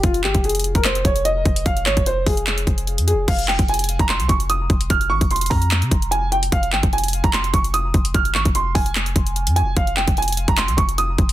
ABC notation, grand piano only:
X:1
M:4/4
L:1/16
Q:1/4=148
K:Fm
V:1 name="Grand piano"
F2 G2 A3 B c2 d2 e4 | f2 d2 c2 A8 A2 | f2 g2 a3 b c'2 d'2 e'4 | f'2 d'2 c'2 b6 a2 g2 |
f2 g2 a3 b c'2 d'2 e'4 | f'2 d'2 c'2 a8 a2 | f2 g2 a3 b c'2 d'2 e'4 |]